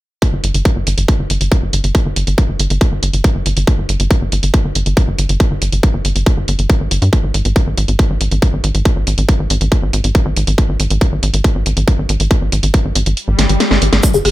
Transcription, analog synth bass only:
0.33 G1
0.44 G1
0.54 G1
0.76 G1
0.87 G1
0.98 G1
1.19 G1
1.30 G1
1.41 G1
1.62 G1
1.73 G1
1.84 G1
2.06 G1
2.16 G1
2.27 G1
2.49 G1
2.60 G1
2.70 G1
2.92 G1
3.03 G1
3.13 G1
3.35 G1
3.46 G1
3.57 G1
3.78 G1
3.89 G1
4.00 G1
4.21 G1
4.32 G1
4.43 G1
4.65 G1
4.75 G1
4.86 G1
5.08 G1
5.19 G1
5.29 G1
5.51 G1
5.62 G1
5.72 G1
5.94 G1
6.05 G1
6.16 G1
6.37 G1
6.48 G1
6.59 G1
6.80 G#1
6.91 G1
7.02 G2
7.24 G#1
7.34 G#1
7.45 G#1
7.67 G#1
7.78 G#1
7.88 G#1
8.10 G#1
8.21 G#1
8.31 G#1
8.53 G#1
8.64 G#1
8.75 G#1
8.96 G#1
9.07 G#1
9.18 G#1
9.39 G#1
9.50 G#1
9.61 G#1
9.83 G#1
9.93 G#1
10.04 G#1
10.26 G#1
10.37 G#1
10.47 G#1
10.69 G#1
10.80 G#1
10.90 G#1
11.12 G#1
11.23 G#1
11.34 G#1
11.55 G#1
11.66 G#1
11.77 G#1
11.98 G#1
12.09 G#1
12.20 G#1
12.42 G#1
12.52 G#1
12.63 G#1
12.85 G#1
12.96 G#1
13.06 G#1
13.28 G#1
13.39 G#1
13.49 G#1
13.71 G#1
13.82 G#1
13.93 G#1
14.14 G1
14.25 G1

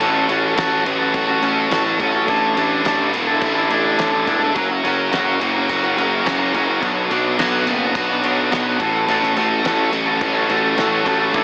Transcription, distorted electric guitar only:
0.01 A2
0.29 C#4
0.58 F#4
0.87 F#3
1.15 F#4
1.44 C#4
1.73 F#3
2.00 C#4
2.28 A2
2.57 D4
2.86 E4
3.14 D3
3.42 E4
3.71 D4
3.99 D3
4.27 D4
4.56 F#3
4.84 C#4
5.12 F#4
5.40 A#3
5.69 F#4
5.98 C#4
6.26 A#3
6.54 C#4
6.82 B2
7.11 D4
7.39 F#4
7.68 B3
7.97 F#4
8.24 D4
8.53 B3
8.81 A2
9.09 A2
9.37 A3
9.66 C#4
9.94 F#3
10.23 C#4
10.51 A3
10.79 F#3
11.06 A3
11.35 A2

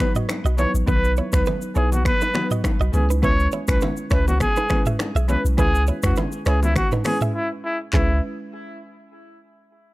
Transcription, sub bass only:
0.45 B1
0.74 A1
0.88 B1
1.33 C#2
1.76 B1
2.80 B1
2.94 C#2
3.68 B1
4.11 C#2
5.15 B1
5.45 B1
5.58 C#2
6.04 E2
6.46 C#2
7.93 C#2

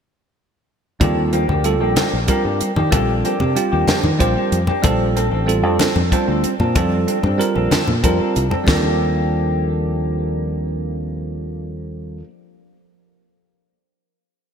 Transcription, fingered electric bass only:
1.01 D#2
1.49 D2
1.81 A#1
2.13 A#1
2.28 muted fingered electric bass stroke
2.45 G2
2.61 muted fingered electric bass stroke
2.77 D#3
2.92 A#1
3.41 C3
3.73 D#2
4.04 D#3
4.20 A#1
4.37 muted fingered electric bass stroke
4.52 F2
4.84 A#1
5.32 A1
5.63 F2
5.96 F2
6.28 D2
6.44 muted fingered electric bass stroke
6.60 A#2
6.76 F2
7.23 G2
7.56 A#1
7.72 muted fingered electric bass stroke
7.88 A#2
8.04 F2
8.20 muted fingered electric bass stroke
8.37 C2
8.68 D#2

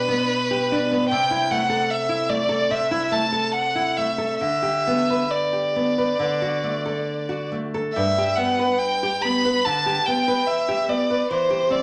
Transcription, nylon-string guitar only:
Already playing: B2 D4
0.08 B3
0.51 G4
0.72 D4
0.91 B3
1.11 C3
1.31 E4
1.51 A3
1.69 A4
2.09 E4
2.29 A3
2.49 A4
2.70 C3
2.91 E4
3.12 A3
3.32 A4
3.75 E4
3.98 A3
4.18 A4
4.41 D3
4.62 G4
4.87 B3
5.10 B4
5.53 G4
5.76 B3
5.98 B4
6.19 D3
6.42 F#4
6.63 A3
6.86 A4
7.29 F#4
7.52 A3
7.74 A4
7.96 G2
8.18 G4
8.38 B3
8.59 B4
9.03 G4
9.25 B3
9.45 B4
9.66 D3
9.86 G4
10.08 B3
10.28 B4
10.69 G4
10.88 B3
11.10 B4
11.31 E3
11.50 G4
11.70 C4

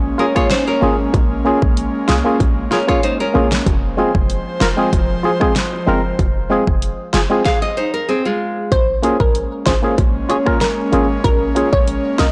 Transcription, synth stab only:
0.18 F4 G#4
0.35 A#3 C#4 F4 G#4
0.81 A#3 C#4 F4 G#4
1.45 A#3 C#4 F4 G#4
2.08 F4 G#4
2.24 A#3 C#4 F4 G#4
2.71 F4 G#4
2.87 A#3 C#4 F4 G#4
3.34 A#3 C#4 F4 G#4
3.97 G#3 C4 F4 G#4
4.60 F4 A#4
4.77 G#3 C4 F4 G#4
5.23 F4 G#4
5.40 G#3 C4 F4 G#4
5.86 G#3 C4 F4 A#4
6.50 G#3 C4 F4 G#4
7.13 F4 G#4
7.30 G#3 C4 F4 G#4
9.02 A#3 C#4 F4 G#4
9.66 F4 G#4
9.82 A#3 C#4 F4 G#4
10.29 F4 G#4
10.46 A#3 C#4 F4 A#4
10.92 A#3 C#4 F4 G#4
11.55 A#3 C#4 F4 G#4
12.18 F4 A#4

